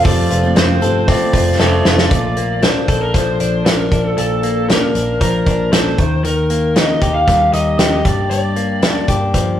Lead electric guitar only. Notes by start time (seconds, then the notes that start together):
0.04 D5
0.56 C5
1.08 D5
1.59 C5 D5
2.11 D5
2.63 C5
3.02 A#4
3.14 C5
3.66 A#4
4.05 A4
4.18 A4
4.69 A#4
5.22 A#4
5.73 C5
6.25 A#4
6.76 D#5
7.14 F5
7.53 D#5
7.79 D#5
8.06 D5
8.31 D5